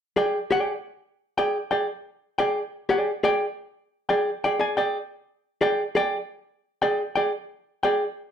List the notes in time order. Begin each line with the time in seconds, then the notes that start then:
0.16 G#4 D5 G5
0.51 G#4 D5 G5
1.38 G#4 D5 G5
1.71 G#4 D5 G5
2.38 G#4 D5 G5
2.89 G#4 D5 G5
3.23 G#4 D5 G5
4.09 G#4 D5 G5
4.44 G#4 D5 G5
4.59 G#4 D5 G#5
4.77 G#4 D5 G5
5.61 G#4 D5 G5
5.95 G#4 D5 G5
6.82 G#4 D5 G5
7.16 G#4 D5 G5
7.83 G#4 D5 G5